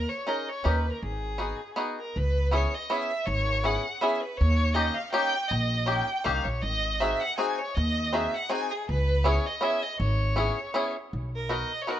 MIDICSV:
0, 0, Header, 1, 4, 480
1, 0, Start_track
1, 0, Key_signature, 4, "minor"
1, 0, Tempo, 374065
1, 1319, Time_signature, 3, 2, 24, 8
1, 15396, End_track
2, 0, Start_track
2, 0, Title_t, "Violin"
2, 0, Program_c, 0, 40
2, 0, Note_on_c, 0, 70, 90
2, 114, Note_on_c, 0, 73, 81
2, 133, Note_off_c, 0, 70, 0
2, 344, Note_on_c, 0, 75, 70
2, 363, Note_off_c, 0, 73, 0
2, 623, Note_on_c, 0, 73, 83
2, 642, Note_off_c, 0, 75, 0
2, 833, Note_on_c, 0, 71, 73
2, 852, Note_off_c, 0, 73, 0
2, 1154, Note_on_c, 0, 70, 67
2, 1173, Note_off_c, 0, 71, 0
2, 1313, Note_off_c, 0, 70, 0
2, 1321, Note_on_c, 0, 68, 73
2, 2231, Note_off_c, 0, 68, 0
2, 2555, Note_on_c, 0, 70, 65
2, 2783, Note_on_c, 0, 71, 84
2, 2802, Note_off_c, 0, 70, 0
2, 3250, Note_off_c, 0, 71, 0
2, 3258, Note_on_c, 0, 73, 77
2, 3518, Note_on_c, 0, 75, 74
2, 3537, Note_off_c, 0, 73, 0
2, 3721, Note_on_c, 0, 76, 87
2, 3740, Note_off_c, 0, 75, 0
2, 4181, Note_on_c, 0, 73, 103
2, 4200, Note_off_c, 0, 76, 0
2, 4683, Note_on_c, 0, 78, 83
2, 4702, Note_off_c, 0, 73, 0
2, 5141, Note_on_c, 0, 76, 76
2, 5161, Note_off_c, 0, 78, 0
2, 5399, Note_on_c, 0, 71, 80
2, 5418, Note_off_c, 0, 76, 0
2, 5607, Note_on_c, 0, 73, 102
2, 5626, Note_off_c, 0, 71, 0
2, 6082, Note_on_c, 0, 75, 90
2, 6101, Note_off_c, 0, 73, 0
2, 6337, Note_on_c, 0, 77, 87
2, 6356, Note_off_c, 0, 75, 0
2, 6554, Note_off_c, 0, 77, 0
2, 6561, Note_on_c, 0, 79, 107
2, 7034, Note_on_c, 0, 75, 95
2, 7053, Note_off_c, 0, 79, 0
2, 7534, Note_on_c, 0, 79, 89
2, 7553, Note_off_c, 0, 75, 0
2, 8007, Note_on_c, 0, 77, 76
2, 8026, Note_off_c, 0, 79, 0
2, 8262, Note_on_c, 0, 73, 78
2, 8281, Note_off_c, 0, 77, 0
2, 8485, Note_on_c, 0, 75, 104
2, 8504, Note_off_c, 0, 73, 0
2, 8984, Note_on_c, 0, 76, 82
2, 9003, Note_off_c, 0, 75, 0
2, 9240, Note_on_c, 0, 78, 95
2, 9259, Note_off_c, 0, 76, 0
2, 9455, Note_off_c, 0, 78, 0
2, 9463, Note_on_c, 0, 80, 78
2, 9727, Note_on_c, 0, 73, 86
2, 9746, Note_off_c, 0, 80, 0
2, 9940, Note_on_c, 0, 75, 103
2, 9959, Note_off_c, 0, 73, 0
2, 10440, Note_on_c, 0, 76, 84
2, 10460, Note_off_c, 0, 75, 0
2, 10701, Note_on_c, 0, 78, 95
2, 10721, Note_off_c, 0, 76, 0
2, 10909, Note_on_c, 0, 80, 101
2, 10929, Note_off_c, 0, 78, 0
2, 11169, Note_on_c, 0, 68, 85
2, 11188, Note_off_c, 0, 80, 0
2, 11395, Note_off_c, 0, 68, 0
2, 11410, Note_on_c, 0, 71, 97
2, 11886, Note_on_c, 0, 73, 83
2, 11905, Note_off_c, 0, 71, 0
2, 12142, Note_on_c, 0, 75, 80
2, 12161, Note_off_c, 0, 73, 0
2, 12361, Note_on_c, 0, 76, 89
2, 12380, Note_off_c, 0, 75, 0
2, 12607, Note_on_c, 0, 75, 79
2, 12626, Note_off_c, 0, 76, 0
2, 12817, Note_off_c, 0, 75, 0
2, 12824, Note_on_c, 0, 73, 84
2, 14011, Note_off_c, 0, 73, 0
2, 14571, Note_on_c, 0, 70, 74
2, 14783, Note_on_c, 0, 75, 75
2, 14802, Note_off_c, 0, 70, 0
2, 15164, Note_on_c, 0, 73, 82
2, 15184, Note_off_c, 0, 75, 0
2, 15279, Note_on_c, 0, 71, 84
2, 15298, Note_off_c, 0, 73, 0
2, 15396, Note_off_c, 0, 71, 0
2, 15396, End_track
3, 0, Start_track
3, 0, Title_t, "Five-string banjo"
3, 0, Program_c, 1, 105
3, 342, Note_on_c, 1, 61, 57
3, 353, Note_on_c, 1, 63, 61
3, 359, Note_on_c, 1, 68, 55
3, 367, Note_on_c, 1, 70, 57
3, 614, Note_off_c, 1, 61, 0
3, 620, Note_off_c, 1, 63, 0
3, 623, Note_off_c, 1, 68, 0
3, 624, Note_off_c, 1, 70, 0
3, 819, Note_on_c, 1, 61, 57
3, 829, Note_on_c, 1, 63, 58
3, 834, Note_on_c, 1, 67, 55
3, 841, Note_on_c, 1, 70, 74
3, 1091, Note_off_c, 1, 61, 0
3, 1096, Note_off_c, 1, 63, 0
3, 1098, Note_off_c, 1, 67, 0
3, 1100, Note_off_c, 1, 70, 0
3, 1772, Note_on_c, 1, 59, 51
3, 1777, Note_on_c, 1, 63, 46
3, 1785, Note_on_c, 1, 66, 50
3, 1793, Note_on_c, 1, 68, 53
3, 2048, Note_off_c, 1, 59, 0
3, 2051, Note_off_c, 1, 63, 0
3, 2052, Note_off_c, 1, 66, 0
3, 2058, Note_off_c, 1, 68, 0
3, 2260, Note_on_c, 1, 59, 67
3, 2272, Note_on_c, 1, 63, 65
3, 2281, Note_on_c, 1, 66, 55
3, 2283, Note_on_c, 1, 68, 61
3, 2537, Note_off_c, 1, 59, 0
3, 2544, Note_off_c, 1, 63, 0
3, 2545, Note_off_c, 1, 68, 0
3, 2547, Note_off_c, 1, 66, 0
3, 3225, Note_on_c, 1, 59, 60
3, 3234, Note_on_c, 1, 61, 52
3, 3236, Note_on_c, 1, 64, 55
3, 3249, Note_on_c, 1, 68, 67
3, 3502, Note_off_c, 1, 59, 0
3, 3506, Note_off_c, 1, 61, 0
3, 3506, Note_off_c, 1, 64, 0
3, 3514, Note_off_c, 1, 68, 0
3, 3720, Note_on_c, 1, 59, 64
3, 3728, Note_on_c, 1, 61, 56
3, 3734, Note_on_c, 1, 64, 55
3, 3740, Note_on_c, 1, 68, 71
3, 3987, Note_off_c, 1, 59, 0
3, 3991, Note_off_c, 1, 61, 0
3, 3994, Note_off_c, 1, 64, 0
3, 3996, Note_off_c, 1, 68, 0
3, 4667, Note_on_c, 1, 59, 65
3, 4675, Note_on_c, 1, 61, 55
3, 4684, Note_on_c, 1, 64, 57
3, 4686, Note_on_c, 1, 68, 69
3, 4937, Note_off_c, 1, 59, 0
3, 4939, Note_off_c, 1, 61, 0
3, 4945, Note_off_c, 1, 64, 0
3, 4945, Note_off_c, 1, 68, 0
3, 5149, Note_on_c, 1, 59, 71
3, 5158, Note_on_c, 1, 61, 57
3, 5164, Note_on_c, 1, 64, 61
3, 5172, Note_on_c, 1, 68, 68
3, 5416, Note_off_c, 1, 59, 0
3, 5421, Note_off_c, 1, 61, 0
3, 5423, Note_off_c, 1, 64, 0
3, 5428, Note_off_c, 1, 68, 0
3, 6089, Note_on_c, 1, 58, 61
3, 6093, Note_on_c, 1, 61, 58
3, 6099, Note_on_c, 1, 63, 58
3, 6105, Note_on_c, 1, 67, 74
3, 6361, Note_off_c, 1, 61, 0
3, 6362, Note_off_c, 1, 58, 0
3, 6366, Note_off_c, 1, 63, 0
3, 6369, Note_off_c, 1, 67, 0
3, 6577, Note_on_c, 1, 58, 71
3, 6587, Note_on_c, 1, 61, 64
3, 6592, Note_on_c, 1, 63, 71
3, 6594, Note_on_c, 1, 67, 81
3, 6844, Note_off_c, 1, 58, 0
3, 6849, Note_off_c, 1, 61, 0
3, 6849, Note_off_c, 1, 63, 0
3, 6852, Note_off_c, 1, 67, 0
3, 7520, Note_on_c, 1, 58, 53
3, 7524, Note_on_c, 1, 61, 55
3, 7534, Note_on_c, 1, 63, 50
3, 7540, Note_on_c, 1, 67, 69
3, 7796, Note_off_c, 1, 58, 0
3, 7799, Note_off_c, 1, 61, 0
3, 7801, Note_off_c, 1, 63, 0
3, 7807, Note_off_c, 1, 67, 0
3, 8012, Note_on_c, 1, 58, 60
3, 8021, Note_on_c, 1, 61, 51
3, 8030, Note_on_c, 1, 63, 59
3, 8030, Note_on_c, 1, 67, 76
3, 8289, Note_off_c, 1, 58, 0
3, 8294, Note_off_c, 1, 61, 0
3, 8297, Note_off_c, 1, 63, 0
3, 8299, Note_off_c, 1, 67, 0
3, 8987, Note_on_c, 1, 60, 59
3, 8991, Note_on_c, 1, 63, 63
3, 9003, Note_on_c, 1, 66, 57
3, 9008, Note_on_c, 1, 68, 67
3, 9264, Note_off_c, 1, 60, 0
3, 9265, Note_off_c, 1, 63, 0
3, 9272, Note_off_c, 1, 66, 0
3, 9275, Note_off_c, 1, 68, 0
3, 9467, Note_on_c, 1, 60, 70
3, 9472, Note_on_c, 1, 63, 61
3, 9478, Note_on_c, 1, 66, 61
3, 9484, Note_on_c, 1, 68, 74
3, 9744, Note_off_c, 1, 60, 0
3, 9747, Note_off_c, 1, 63, 0
3, 9751, Note_off_c, 1, 66, 0
3, 9751, Note_off_c, 1, 68, 0
3, 10427, Note_on_c, 1, 60, 64
3, 10437, Note_on_c, 1, 63, 62
3, 10447, Note_on_c, 1, 66, 57
3, 10448, Note_on_c, 1, 68, 69
3, 10699, Note_off_c, 1, 60, 0
3, 10705, Note_off_c, 1, 63, 0
3, 10708, Note_off_c, 1, 66, 0
3, 10710, Note_off_c, 1, 68, 0
3, 10901, Note_on_c, 1, 60, 70
3, 10908, Note_on_c, 1, 63, 59
3, 10915, Note_on_c, 1, 66, 59
3, 10920, Note_on_c, 1, 68, 65
3, 11175, Note_off_c, 1, 60, 0
3, 11176, Note_off_c, 1, 63, 0
3, 11181, Note_off_c, 1, 66, 0
3, 11184, Note_off_c, 1, 68, 0
3, 11858, Note_on_c, 1, 59, 59
3, 11863, Note_on_c, 1, 61, 56
3, 11872, Note_on_c, 1, 64, 69
3, 11879, Note_on_c, 1, 68, 79
3, 12127, Note_off_c, 1, 59, 0
3, 12130, Note_off_c, 1, 61, 0
3, 12135, Note_off_c, 1, 64, 0
3, 12137, Note_off_c, 1, 68, 0
3, 12329, Note_on_c, 1, 59, 62
3, 12335, Note_on_c, 1, 61, 55
3, 12343, Note_on_c, 1, 64, 63
3, 12355, Note_on_c, 1, 68, 79
3, 12599, Note_off_c, 1, 59, 0
3, 12602, Note_off_c, 1, 61, 0
3, 12607, Note_off_c, 1, 64, 0
3, 12612, Note_off_c, 1, 68, 0
3, 13293, Note_on_c, 1, 59, 69
3, 13299, Note_on_c, 1, 61, 58
3, 13306, Note_on_c, 1, 64, 59
3, 13319, Note_on_c, 1, 68, 77
3, 13567, Note_off_c, 1, 59, 0
3, 13570, Note_off_c, 1, 61, 0
3, 13573, Note_off_c, 1, 64, 0
3, 13579, Note_off_c, 1, 68, 0
3, 13781, Note_on_c, 1, 59, 74
3, 13790, Note_on_c, 1, 61, 70
3, 13801, Note_on_c, 1, 64, 70
3, 13805, Note_on_c, 1, 68, 84
3, 14056, Note_off_c, 1, 59, 0
3, 14060, Note_off_c, 1, 61, 0
3, 14066, Note_off_c, 1, 68, 0
3, 14067, Note_off_c, 1, 64, 0
3, 14748, Note_on_c, 1, 59, 59
3, 14754, Note_on_c, 1, 63, 49
3, 14759, Note_on_c, 1, 66, 47
3, 14763, Note_on_c, 1, 70, 68
3, 15027, Note_off_c, 1, 59, 0
3, 15029, Note_off_c, 1, 63, 0
3, 15032, Note_off_c, 1, 66, 0
3, 15033, Note_off_c, 1, 70, 0
3, 15234, Note_on_c, 1, 59, 61
3, 15243, Note_on_c, 1, 63, 54
3, 15248, Note_on_c, 1, 66, 60
3, 15251, Note_on_c, 1, 70, 67
3, 15396, Note_off_c, 1, 59, 0
3, 15396, Note_off_c, 1, 63, 0
3, 15396, Note_off_c, 1, 66, 0
3, 15396, Note_off_c, 1, 70, 0
3, 15396, End_track
4, 0, Start_track
4, 0, Title_t, "Upright bass"
4, 0, Program_c, 2, 32
4, 838, Note_on_c, 2, 39, 87
4, 1148, Note_off_c, 2, 39, 0
4, 1316, Note_on_c, 2, 32, 84
4, 1943, Note_off_c, 2, 32, 0
4, 2773, Note_on_c, 2, 37, 84
4, 3398, Note_off_c, 2, 37, 0
4, 4195, Note_on_c, 2, 32, 99
4, 4820, Note_off_c, 2, 32, 0
4, 5656, Note_on_c, 2, 39, 100
4, 6269, Note_off_c, 2, 39, 0
4, 7070, Note_on_c, 2, 34, 101
4, 7696, Note_off_c, 2, 34, 0
4, 8027, Note_on_c, 2, 36, 74
4, 8270, Note_off_c, 2, 36, 0
4, 8280, Note_on_c, 2, 34, 71
4, 8490, Note_off_c, 2, 34, 0
4, 8503, Note_on_c, 2, 32, 84
4, 9142, Note_off_c, 2, 32, 0
4, 9967, Note_on_c, 2, 39, 101
4, 10589, Note_off_c, 2, 39, 0
4, 11406, Note_on_c, 2, 37, 91
4, 12022, Note_off_c, 2, 37, 0
4, 12827, Note_on_c, 2, 32, 97
4, 13457, Note_off_c, 2, 32, 0
4, 14284, Note_on_c, 2, 35, 83
4, 14917, Note_off_c, 2, 35, 0
4, 15396, End_track
0, 0, End_of_file